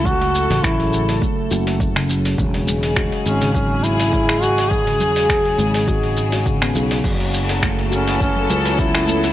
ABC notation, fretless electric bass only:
X:1
M:4/4
L:1/16
Q:"Swing 16ths" 1/4=103
K:F#m
V:1 name="Fretless electric bass" clef=bass
C,,3 A,,, A,,,4 z2 F,,,6 | E,,,4- E,,, z G,,,8- G,,,2- | G,,,2 E,,,4 G,,,8 B,,,2 | F,,,8- F,,,2 C,,6 |]